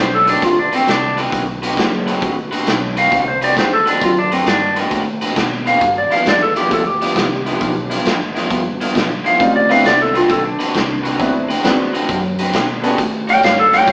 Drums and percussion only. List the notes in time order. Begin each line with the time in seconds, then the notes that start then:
0.27 closed hi-hat
0.42 kick, closed hi-hat
0.73 closed hi-hat
0.88 snare, closed hi-hat
1.18 closed hi-hat
1.32 kick, closed hi-hat
1.63 closed hi-hat
1.77 kick, snare, closed hi-hat
2.08 closed hi-hat
2.22 kick, closed hi-hat
2.52 closed hi-hat
2.67 snare, closed hi-hat
2.97 closed hi-hat
3.12 kick, closed hi-hat
3.42 closed hi-hat
3.57 kick, snare, closed hi-hat
3.87 closed hi-hat
4.02 kick, closed hi-hat
4.32 closed hi-hat
4.46 snare, closed hi-hat
4.76 closed hi-hat
4.91 kick, closed hi-hat
5.21 closed hi-hat
5.36 kick, snare, closed hi-hat
5.67 closed hi-hat
5.81 kick, closed hi-hat
6.11 closed hi-hat
6.26 snare, closed hi-hat
6.56 closed hi-hat
6.71 kick, closed hi-hat
7.02 closed hi-hat
7.16 kick, snare, closed hi-hat
7.46 closed hi-hat
7.61 kick, closed hi-hat
7.91 closed hi-hat
8.06 snare, closed hi-hat
8.36 snare, closed hi-hat
8.50 kick, closed hi-hat
8.81 closed hi-hat
8.95 kick, snare, closed hi-hat
9.26 closed hi-hat
9.40 kick, closed hi-hat
9.71 closed hi-hat
9.85 snare, closed hi-hat
10.15 closed hi-hat
10.29 kick, closed hi-hat
10.60 closed hi-hat
10.75 kick, snare, closed hi-hat
11.05 closed hi-hat
11.20 kick, closed hi-hat
11.50 closed hi-hat
11.64 snare, closed hi-hat
11.95 closed hi-hat
12.09 kick, closed hi-hat
12.39 closed hi-hat
12.53 kick, snare, closed hi-hat
12.84 closed hi-hat
12.98 kick, closed hi-hat
13.29 closed hi-hat
13.43 snare, closed hi-hat
13.73 snare, closed hi-hat
13.87 kick, closed hi-hat